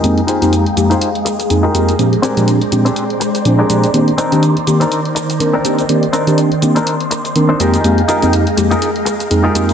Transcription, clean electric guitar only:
X:1
M:4/4
L:1/16
Q:"Swing 16ths" 1/4=123
K:Cm
V:1 name="Clean electric guitar"
[EFGAB] z [EFGAc]2 z3 [EFGAc] z4 z [EFGAB]3 | z2 [CDGAB]2 z3 [CDGAc] z4 z [CDGAB]3 | z2 [CDEB]2 z3 [CDEB] z4 z [CDEB]3 | z2 [CDEB]2 z3 [CDEB] z4 z [CDEc] [EFGAB]2- |
[EFGAB] z [EFGAB]2 z3 [EFGAB] z4 z [EFGAB]3 |]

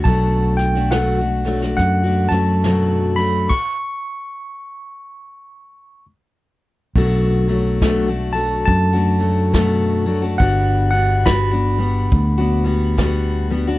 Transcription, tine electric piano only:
X:1
M:4/4
L:1/8
Q:"Swing" 1/4=70
K:Bm
V:1 name="Tine electric piano"
a g f2 f a2 b | c'6 z2 | z3 a a4 | f f b4- b z |]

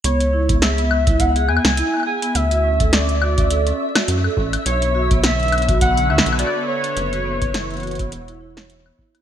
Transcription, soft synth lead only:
X:1
M:4/4
L:1/8
Q:"Swing 16ths" 1/4=104
K:C#phr
V:1 name="Soft synth lead"
c2 e2 f g2 g | e2 d4 z2 | c2 e2 f e d c- | c6 z2 |]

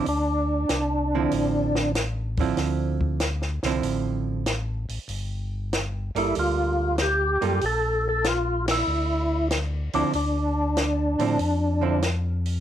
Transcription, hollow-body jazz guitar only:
X:1
M:4/4
L:1/8
Q:"Swing" 1/4=95
K:Dm
V:1 name="Hollow-body jazz guitar"
z3 [D,F,CE]3 z [D,F,CE]- | [D,F,CE]2 z [D,F,CE]3 z2 | z3 [G,B,A]3 z [G,B,FA] | z6 z [D,F,CE] |
z3 [D,F,CE] z [D,F,CE] z2 |]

